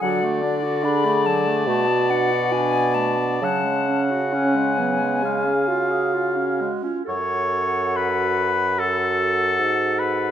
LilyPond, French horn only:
\new Staff \with { instrumentName = "French horn" } { \time 4/4 \key fis \minor \tempo 4 = 70 fis'8 r8 gis'4 fis'4 d'4 | cis'4 cis'8 b8 gis'8 fis'4~ fis'16 eis'16 | fis'2 fis'2 | }